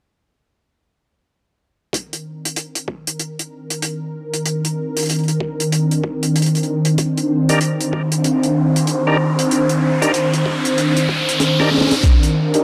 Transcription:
1.93 11.99 D#3 medium
1.93 11.99 C4 medium
1.93 11.99 D4 medium
1.93 6.94 A#4 medium
1.93 kick loud
1.93 closed hi-hat medium
2.13 closed hi-hat soft
2.45 closed hi-hat medium
2.56 closed hi-hat medium
2.75 closed hi-hat medium
2.88 kick loud
3.07 closed hi-hat medium
3.19 closed hi-hat medium
3.39 closed hi-hat medium
3.70 closed hi-hat medium
3.82 closed hi-hat medium
4.34 closed hi-hat medium
4.46 closed hi-hat medium
4.65 closed hi-hat medium
4.97 closed hi-hat medium
5.00 closed hi-hat medium
5.03 closed hi-hat soft
5.06 closed hi-hat soft
5.09 closed hi-hat soft
5.09 closed hi-hat medium
5.14 closed hi-hat soft
5.19 closed hi-hat soft
5.24 closed hi-hat soft
5.28 closed hi-hat medium
5.40 kick loud
5.60 closed hi-hat medium
5.72 closed hi-hat medium
5.91 closed hi-hat medium
6.04 kick loud
6.23 closed hi-hat medium
6.36 closed hi-hat medium
6.42 closed hi-hat medium
6.46 closed hi-hat soft
6.55 closed hi-hat soft
6.57 closed hi-hat soft
6.63 closed hi-hat soft
6.85 closed hi-hat medium
6.98 12.00 C5 medium
6.98 kick loud
6.98 closed hi-hat medium
6.98 riser medium
7.18 closed hi-hat soft
7.49 7.60 D4 medium
7.49 7.60 D#4 medium
7.49 7.60 G4 medium
7.49 7.60 A#4 loud
7.49 closed hi-hat medium
7.61 closed hi-hat medium
7.81 closed hi-hat medium
7.93 kick loud
8.12 closed hi-hat medium
8.24 closed hi-hat medium
8.43 closed hi-hat soft
8.76 closed hi-hat medium
8.87 closed hi-hat medium
9.07 9.17 D4 medium
9.07 9.17 D#4 medium
9.07 9.17 G4 medium
9.07 9.17 A#4 loud
9.39 closed hi-hat medium
9.51 closed hi-hat medium
9.69 closed hi-hat soft
10.02 10.12 D4 medium
10.02 10.12 D#4 medium
10.02 10.12 G4 medium
10.02 10.12 A#4 loud
10.02 closed hi-hat medium
10.14 closed hi-hat medium
10.34 closed hi-hat medium
10.46 kick loud
10.65 closed hi-hat medium
10.78 closed hi-hat medium
10.97 closed hi-hat medium
11.09 kick loud
11.29 closed hi-hat medium
11.40 snare medium
11.40 closed hi-hat medium
11.60 11.70 D4 medium
11.60 11.70 D#4 medium
11.60 11.70 G4 medium
11.60 11.70 A#4 medium
11.60 snare medium
11.71 snare soft
11.74 snare soft
11.78 snare medium
11.81 snare medium
11.87 snare medium
11.91 snare medium
11.91 closed hi-hat medium
12.03 12.64 D#3 medium
12.03 12.64 C4 medium
12.03 12.64 D4 medium
12.03 12.64 A#4 medium
12.03 kick loud
12.03 snare medium
12.03 closed hi-hat medium
12.03 riser medium
12.23 closed hi-hat medium
12.54 12.64 D4 medium
12.54 12.64 D#4 medium
12.54 12.64 G4 medium
12.54 12.64 A#4 loud
12.54 closed hi-hat medium

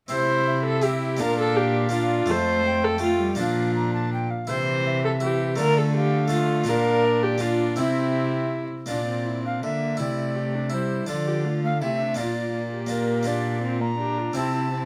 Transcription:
0.08 1.16 C3 medium
0.08 1.22 C3 medium
0.08 0.80 C4 soft
0.08 0.81 E4 soft
0.08 0.80 E4 medium
0.08 0.62 C5 medium
0.47 1.16 E5 medium
0.65 0.85 A4 medium
0.82 1.18 C4 soft
0.82 1.19 E4 soft
0.82 1.21 E4 medium
0.82 1.21 G4 medium
1.17 2.29 A#2 medium
1.17 1.88 A#3 medium
1.17 1.89 D4 soft
1.17 1.92 D4 medium
1.17 1.90 F4 soft
1.17 1.38 A#4 loud
1.17 2.31 F5 medium
1.21 2.26 A#2 soft
1.39 1.58 A4 medium
1.56 1.92 G4 medium
1.89 2.26 A#3 medium
1.89 2.27 D4 medium
1.89 2.26 F4 medium
1.89 2.32 F4 medium
1.93 2.31 D4 medium
2.26 3.35 F2 medium
2.26 3.37 F2 medium
2.26 2.97 A3 soft
2.26 2.98 F4 medium
2.26 2.65 A5 medium
2.30 3.02 A3 medium
2.30 2.86 C5 loud
2.65 3.37 G5 medium
2.84 3.02 A4 loud
2.98 3.36 A3 medium
2.98 3.20 A3 medium
2.98 3.36 F4 medium
2.98 3.38 F4 medium
3.20 3.41 G3 medium
3.35 4.27 A#2 medium
3.35 4.29 A#2 medium
3.35 4.44 A#3 soft
3.35 4.45 D4 soft
3.35 4.11 D4 medium
3.35 4.45 F4 medium
3.35 3.71 F5 medium
3.40 4.31 F3 medium
3.76 3.93 A#5 medium
3.93 4.12 A5 medium
4.13 4.32 G5 medium
4.30 4.49 F5 medium
4.47 5.55 C3 medium
4.47 5.61 C3 medium
4.47 5.19 E3 medium
4.47 5.19 E4 soft
4.47 5.01 C5 medium
4.86 5.55 E5 medium
5.05 5.12 A4 medium
5.20 5.61 E3 medium
5.20 5.57 E4 soft
5.20 5.58 G4 medium
5.56 6.64 D3 medium
5.56 6.27 A3 medium
5.56 6.28 D4 soft
5.56 6.29 F4 medium
5.56 5.79 A#4 loud
5.56 5.94 D5 medium
5.60 6.68 D3 medium
5.60 6.32 A3 medium
5.78 5.96 A4 medium
5.96 6.30 G4 medium
5.96 6.67 F5 medium
6.28 6.65 A3 medium
6.28 6.64 D4 medium
6.28 6.65 F4 medium
6.28 6.70 F4 medium
6.32 6.70 A3 medium
6.64 7.74 A#2 medium
6.64 7.37 A#3 medium
6.64 7.37 D4 medium
6.64 7.38 F4 medium
6.68 7.81 A#2 medium
6.68 7.41 D4 medium
6.68 7.24 A#4 loud
6.68 7.06 F5 medium
7.04 7.78 D5 medium
7.23 7.42 G4 medium
7.38 7.75 A#3 medium
7.38 7.76 D4 medium
7.38 7.77 F4 medium
7.38 7.78 F4 medium
7.42 7.80 D4 medium
7.76 8.67 C3 medium
7.76 8.71 C3 medium
7.76 8.85 C4 soft
7.76 8.71 C4 medium
7.76 8.85 E4 medium
7.76 8.69 E4 medium
7.76 8.64 E5 medium
8.86 9.65 A#2 medium
8.86 9.94 A#3 soft
8.86 9.95 D4 soft
8.86 9.07 D4 medium
8.86 9.95 F4 soft
8.86 9.41 D5 medium
8.90 9.59 A#2 soft
8.90 9.28 F4 medium
9.08 9.64 C4 soft
9.26 9.46 E4 medium
9.45 9.62 D4 medium
9.45 9.63 F5 medium
9.62 10.01 D3 medium
9.62 9.96 D3 soft
9.62 10.01 A#3 medium
9.62 10.01 D4 medium
9.62 9.99 E5 medium
9.97 11.08 C3 medium
9.97 11.05 C3 soft
9.97 10.74 A3 medium
9.97 10.69 E4 soft
9.97 10.37 E4 medium
9.97 10.71 D5 medium
10.36 10.57 G4 medium
10.55 10.75 D4 medium
10.70 11.09 G3 medium
10.70 11.06 E4 soft
10.70 11.10 E4 medium
10.70 11.08 C5 medium
11.07 11.78 D3 soft
11.07 11.84 D3 medium
11.07 11.47 F3 medium
11.07 12.14 D4 soft
11.07 12.14 F4 soft
11.07 11.28 F4 medium
11.07 11.62 D5 medium
11.27 11.46 G4 medium
11.44 11.63 A3 medium
11.44 11.80 F4 medium
11.64 11.71 A3 medium
11.64 11.81 F5 medium
11.81 12.14 C3 medium
11.81 12.21 C3 medium
11.81 12.19 A3 medium
11.81 11.88 E4 medium
11.81 12.17 E5 medium
11.99 12.19 D4 medium
12.14 14.32 A#2 soft
12.14 12.85 A#3 soft
12.14 12.54 A#3 medium
12.14 12.87 D4 soft
12.14 12.88 F4 soft
12.14 12.53 F4 medium
12.19 14.36 A#2 medium
12.19 12.89 D5 medium
12.54 13.29 A#3 medium
12.54 12.61 F4 medium
12.73 13.61 G4 medium
12.87 13.22 A#3 soft
12.87 13.23 D4 soft
12.87 13.24 F4 soft
12.87 13.28 A#4 medium
13.23 14.31 A#3 soft
13.23 14.31 D4 soft
13.23 14.32 F4 soft
13.27 13.62 D4 medium
13.27 13.82 D5 medium
13.63 13.82 C4 medium
13.63 13.99 F4 medium
13.80 13.98 A#3 medium
13.80 14.36 A#5 medium
13.98 14.37 D4 medium
13.98 14.20 G4 medium
14.18 14.38 F4 medium
14.33 14.85 C3 soft
14.33 14.85 C3 medium
14.33 14.85 C4 soft
14.33 14.72 C4 medium
14.33 14.85 E4 soft
14.33 14.54 E4 medium
14.33 14.82 A5 medium
14.55 14.72 E4 medium
14.72 14.85 C4 medium
14.72 14.85 E4 medium

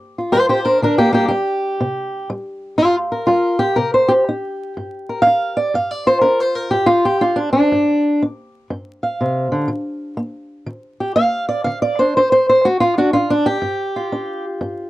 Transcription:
0.00 0.29 G2 medium
0.18 0.65 F4 soft
0.32 0.79 G3 medium
0.32 0.37 G4 medium
0.32 0.48 C5 medium
0.49 0.59 G4 medium
0.49 0.66 C5 medium
0.65 0.81 D4 medium
0.65 0.82 A#4 medium
0.82 1.28 D3 medium
0.82 0.99 D4 medium
0.82 0.98 A#4 medium
0.98 1.11 A#3 medium
0.98 1.13 G4 loud
1.13 1.30 G3 soft
1.13 1.30 A#3 medium
1.13 1.27 G4 medium
1.28 1.76 G3 medium
1.28 2.28 G4 medium
1.80 2.26 C3 medium
2.30 2.75 G3 medium
2.78 3.25 G2 medium
2.78 2.95 F4 medium
3.12 3.59 A#4 medium
3.27 3.74 G3 medium
3.27 3.60 F4 medium
3.59 3.76 G4 loud
3.76 4.23 C3 medium
3.76 3.93 A#4 medium
3.94 4.10 C5 medium
4.08 4.10 G4 loud
4.08 5.78 G4 soft
4.29 4.73 D#4 medium
4.77 5.22 G2 medium
5.09 5.56 A#4 medium
5.22 5.56 F5 loud
5.26 5.71 D#4 medium
5.57 5.74 D5 loud
5.74 6.20 G2 medium
5.74 5.91 F5 medium
5.91 6.07 D5 medium
6.07 6.85 F4 soft
6.07 6.21 C5 loud
6.21 6.69 D4 medium
6.21 6.40 A#4 medium
6.40 6.55 C5 medium
6.55 6.72 A#4 medium
6.71 7.19 G2 medium
6.71 6.88 G4 medium
6.86 7.04 F4 loud
7.05 7.22 G4 medium
7.21 7.35 D4 medium
7.21 7.38 F4 medium
7.36 7.51 D4 medium
7.53 8.21 D4 medium
7.72 8.17 G2 medium
8.22 8.67 D4 medium
8.70 9.16 G2 medium
9.03 9.67 F5 soft
9.21 9.51 C3 medium
9.52 9.68 D3 medium
9.68 10.14 D#3 medium
10.17 10.63 A#3 medium
10.66 11.12 D#3 medium
11.00 11.15 G4 medium
11.16 11.62 A#3 medium
11.16 11.48 F5 loud
11.49 11.64 D5 medium
11.64 12.11 D3 medium
11.64 11.81 F5 medium
11.82 11.98 D5 medium
11.99 12.17 D4 soft
11.99 12.15 C5 medium
12.17 12.62 D4 medium
12.17 12.31 C5 medium
12.32 12.48 C5 loud
12.49 12.65 C5 medium
12.65 13.10 A3 medium
12.65 12.80 F#4 loud
12.80 12.96 F4 loud
12.98 13.14 D4 medium
12.98 13.13 F#4 medium
13.13 13.29 D4 medium
13.13 13.29 F4 loud
13.30 13.46 D4 loud
13.46 14.44 G4 loud
13.62 14.08 G2 medium
13.96 14.90 F4 soft
14.12 14.57 D4 medium
14.61 14.90 G2 medium

